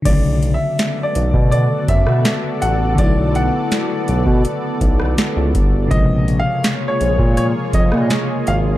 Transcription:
<<
  \new Staff \with { instrumentName = "Grand piano" } { \time 4/4 \key b \minor \tempo 4 = 82 \tuplet 3/2 { d''4 e''8~ e''8 d''4 } d''8 e''4 fis''8 | d''8 fis''2. r8 | \tuplet 3/2 { dis''4 eis''8~ eis''8 cis''4 } cis''8 dis''4 eis''8 | }
  \new Staff \with { instrumentName = "Analog synth pad" } { \time 4/4 \key b \minor <b fis' a' d''>1~ | <b fis' a' d''>1 | <ais eis' gis' cis''>1 | }
  \new Staff \with { instrumentName = "FM electric piano" } { \clef bass \time 4/4 \key b \minor <cis d fis a>1 | <d fis a e'>1 | <c cis eis gis>1 | }
  \new Staff \with { instrumentName = "Analog synth bass" } { \clef bass \time 4/4 \key b \minor b,,8. r8. b,,16 b,8 r16 fis,16 b,16 r8 a,,8 | b,,8. r8. b,,16 b,16 r8 b,,8 r16 cis,16 g,,8 | ais,,8. r8. ais,,16 ais,8 r16 eis,16 ais,16 r8 gis,,8 | }
  \new DrumStaff \with { instrumentName = "Drums" } \drummode { \time 4/4 <cymc hh bd>8 hh8 <hh sn>8 hh16 bd16 hh8 <hh bd>16 ss16 <hh sn>8 hh8 | <hh bd>8 hh8 <hh sn>8 hh16 bd16 hh8 <hh bd>16 ss16 <hh sn>8 <hh bd>8 | <hh bd>8 hh8 <hh sn>8 hh16 bd16 hh8 <hh bd>16 ss16 <hh sn>8 hh8 | }
>>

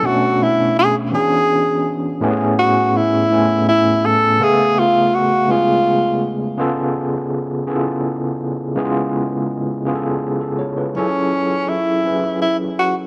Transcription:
<<
  \new Staff \with { instrumentName = "Tenor saxophone" } { \time 6/8 \key cis \phrygian \tempo 4. = 55 fis'8 e'8 gis'8 gis'4 r8 | r8 fis'8 e'4 e'8 a'8 | gis'8 eis'8 fis'8 eis'4 r8 | r2. |
r2. | cis'4 e'4 e'8 fis'8 | }
  \new Staff \with { instrumentName = "Tine electric piano" } { \time 6/8 \key cis \phrygian << { r2. | r2. | r2. | r2. |
r2 r16 a'16 <gis' cis''>16 <eis' b'>16~ | <eis' b'>16 r2 r8. | } \\ { <b, a b cis' d'>4. <e b cis' d' fis' gis'>4. | <a, a b cis' g' gis'>4. <a, a b cis' gis''>4. | <cis a b gis' eis''>4. <cis gis b eis' gis'>4. | <cis b eis' gis' a'>4. <cis b e' eis' gis' a'>4. |
<cis gis b e' eis' gis'>4. <cis b eis' gis' a'>4. | <fis cis' e' gis' a'>4. <fis cis' e' gis' b'>4. | } >> }
>>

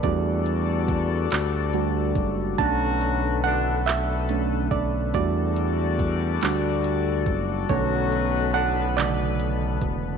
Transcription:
<<
  \new Staff \with { instrumentName = "Analog synth pad" } { \time 6/8 \key b \minor \tempo 4. = 47 << { <g fis' d''>2. | <d a a'>2. | <g fis' d''>2. | <b, b b'>2. | } \\ { a'2. | b'2. | a'2.~ | a'2. | } >> }
  \new Staff \with { instrumentName = "Reed electric piano" } { \time 6/8 \key b \minor d''2~ d''8 r8 | a''4 fis''8 e''4 d''8 | d''2~ d''8 r8 | cis''4 fis''8 d''4. | }
  \new Staff \with { instrumentName = "Reed electric piano" } { \time 6/8 \key b \minor <g a d' fis'>4. r8 <g a d' fis'>8 r8 | <a cis' d'>8 r4. <a cis' d'>8 r8 | <g a d' fis'>4. <g a d' fis'>8 r4 | <d a cis'>4. <cis d a>8 r4 | }
  \new Staff \with { instrumentName = "Horn section" } { \clef bass \time 6/8 \key b \minor r2. | <d fis cis' fis'>4 <a, d fis d'>8 r4. | r2. | <d fis cis' fis'>4 <a, d fis d'>8 r4. | }
  \new Staff \with { instrumentName = "Analog synth bass" } { \clef bass \time 6/8 \key b \minor e,4. d,4 fis,,8 | b,,2~ b,,8 b,,8 | e,4. d,4 fis,,8 | b,,2~ b,,8 e,,8 | }
  \new DrumStaff \with { instrumentName = "Drums" } \drummode { \time 6/8 <hh bd>8 hh8 <hh bd>8 <hc hh>8 hh8 <hh bd>8 | <hh bd>8 hh8 hh8 <hc hh>8 hh8 <hh bd>8 | <hh bd>8 hh8 <hh bd>8 <hc hh>8 hh8 <hh bd>8 | <hh bd>8 hh8 hh8 <hc hh>8 hh8 <hh bd>8 | }
>>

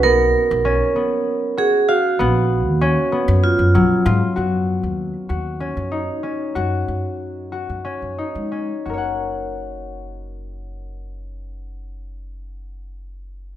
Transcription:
<<
  \new Staff \with { instrumentName = "Vibraphone" } { \time 7/8 \key fis \major \tempo 4 = 94 ais'2~ ais'8 gis'8 fis'8~ | fis'2 eis'4 r8 | r2. r8 | r2. r8 |
r2. r8 | r2. r8 | }
  \new Staff \with { instrumentName = "Harp" } { \time 7/8 \key fis \major b4 cis'8 b4 fis'8 eis''8 | b4 cis'8 b4 fis8 eis'8 | fis'4 r8 fis'8 cis'8 dis'8 cis'8 | fis'4 r8 fis'8 cis'8 dis'8 cis'8 |
<fis' ais' cis'' fis''>2.~ <fis' ais' cis'' fis''>8~ | <fis' ais' cis'' fis''>2.~ <fis' ais' cis'' fis''>8 | }
  \new Staff \with { instrumentName = "Upright bass" } { \clef bass \time 7/8 \key fis \major b,,8 r16 b,,8 r2 r16 | ais,,8. dis,8 r8 fis,8 fis,16 b,,16 r16 gis,16 r16 | fis,8. dis,8 r16 dis,8. fis,8 r8. | fis,8 fis,4~ fis,16 fis,16 r16 fis,16 r16 gis8 r16 |
fis,,2.~ fis,,8~ | fis,,2.~ fis,,8 | }
>>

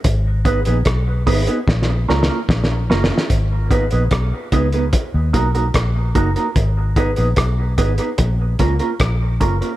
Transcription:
<<
  \new Staff \with { instrumentName = "Clean electric guitar" } { \time 4/4 \key gis \dorian \tempo 4 = 74 r8 <b dis' gis' b'>16 <b dis' gis' b'>16 r8 <b dis' gis' b'>16 <b dis' gis' b'>16 r8 <ais cis' eis' ais'>16 <ais cis' eis' ais'>16 r8 <ais cis' eis' ais'>16 <ais cis' eis' ais'>16 | r8 <b dis' gis' b'>16 <b dis' gis' b'>16 r8 <b dis' gis' b'>16 <b dis' gis' b'>16 r8 <ais dis' fis' ais'>16 <ais dis' fis' ais'>16 r8 <ais dis' fis' ais'>16 <ais dis' fis' ais'>16 | r8 <b dis' gis' b'>16 <b dis' gis' b'>16 r8 <b dis' gis' b'>16 <b dis' gis' b'>16 r8 <ais cis' eis' ais'>16 <ais cis' eis' ais'>16 r8 <ais cis' eis' ais'>16 <ais cis' eis' ais'>16 | }
  \new Staff \with { instrumentName = "Fingered electric bass" } { \clef bass \time 4/4 \key gis \dorian gis,,8. ais,,16 b,,8 gis,,16 r16 ais,,8 cis,16 r16 ais,,8 fis,,16 r16 | gis,,8. ais,,16 b,,16 r16 cis,8 r16 dis,16 b,,8 ais,,8 fis,,16 r16 | gis,,8. ais,,16 b,,8 gis,,16 r16 ais,,8 cis,16 r16 ais,,8 fis,,16 r16 | }
  \new DrumStaff \with { instrumentName = "Drums" } \drummode { \time 4/4 <hh bd>8 <hh bd>16 hh16 <hh bd ss>8 <hho bd>16 hh16 \tuplet 3/2 { <bd sn>16 sn16 r16 sn16 sn16 r16 <bd sn>16 sn16 r16 sn16 sn16 sn16 } | <hh bd>8 <hh bd>16 hh16 <hh bd ss>8 <hh bd>16 hh16 <hh bd>8 <hh bd>16 hh16 <hh bd ss>8 <hh bd>16 hh16 | <hh bd>8 <hh bd>16 hh16 <hh bd ss>8 <hh bd>16 hh16 <hh bd>8 <hh bd>16 hh16 <hh bd ss>8 <hh bd>16 hh16 | }
>>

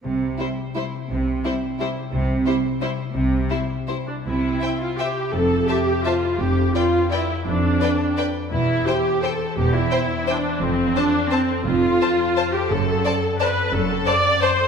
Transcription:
<<
  \new Staff \with { instrumentName = "Violin section" } { \time 3/4 \key c \major \tempo 4 = 170 r4 c''4 c''4 | r4 c''4 c''4 | r4 c''4 c''4 | r4 c''4 c''4 |
r4 g''4 g''4 | r4 a''4 a''4 | r4 g''4 g''4 | r4 g''4 g''4 |
r4 g''4 g''4 | r4 g''4 g''4 | r4 a''4 a''4 | r4 a''4 a''4 |
r4 a''4 a''4 | r4 a''4 a''4 | }
  \new Staff \with { instrumentName = "Violin section" } { \time 3/4 \key c \major r4 e'4 e'4 | r4 e'4 e'4 | r4 e'4 e'4 | r4 e'4 e'4 |
r4 <c'' e''>4 <c'' e''>4 | r4 <c'' e''>4 <c'' e''>4 | r4 <b' d''>4 <b' d''>4 | r4 <b' d''>4 <b' d''>4 |
r4 c''4 c''4 | r4 c''4 c''4 | r4 c''4 c''4 | r4 c''4 c''4 |
r4 <c'' d''>4 <c'' d''>4 | r4 <c'' d''>4 <c'' d''>4 | }
  \new Staff \with { instrumentName = "Harp" } { \time 3/4 \key c \major c8 g8 c'8 g'8 e'8 g'8 | c8 g8 c'8 g'8 e'8 g'8 | c8 g8 c'8 g'8 e'8 g'8 | c8 g8 c'8 g'8 e'8 g'8 |
c8 c'8 g'8 e''8 g'8 e'8 | f,8 c'8 a'8 e''8 a'8 e'8 | f,8 d'8 b'8 g''8 b'8 g'8 | f,8 d'8 b'8 g''8 b'8 g'8 |
e,8 c'8 c''8 g''8 c''8 g'8 | e,8 c'8 c''8 g''8 c''8 g'8 | f,8 c'8 c''8 a''8 c''8 a'8 | f,8 c'4 a''4 a'8 |
fis,8 c'8 d''8 a''8 d''8 a'8 | fis,8 c'8 d''8 a''4 a'8 | }
  \new Staff \with { instrumentName = "Viola section" } { \time 3/4 \key c \major r4 g4 g4 | r4 g4 g4 | r4 g4 g4 | r4 g4 g8 d'8 |
e'4. f'8 g'4 | a'4 g'4 f'4 | g'4 f'4 e'4 | d'2 r4 |
e'4 g'4 a'4 | g'8 e'4. d'4 | c'4 d'4 c'4 | f'2~ f'8 g'8 |
a'2 b'4 | a'4 d''4 c''4 | }
  \new Staff \with { instrumentName = "Cello section" } { \clef bass \time 3/4 \key c \major c4 r2 | c4 r2 | c4 r2 | c4 r2 |
c4 r2 | f,4 r2 | f,4 r2 | f,4 r2 |
e,4 r2 | e,4 r2 | f,4 r2 | f,4 r2 |
fis,4 r2 | fis,4 r2 | }
  \new Staff \with { instrumentName = "Double bass section" } { \clef bass \time 3/4 \key c \major c,4 r2 | c,4 r2 | c,4 r2 | c,4 r2 |
c,4 r2 | f,,4 r2 | f,,4 r2 | f,,4 r2 |
e,,4 r2 | e,,4 r2 | f,,4 r2 | f,,4 r2 |
fis,,4 r2 | fis,,4 r2 | }
>>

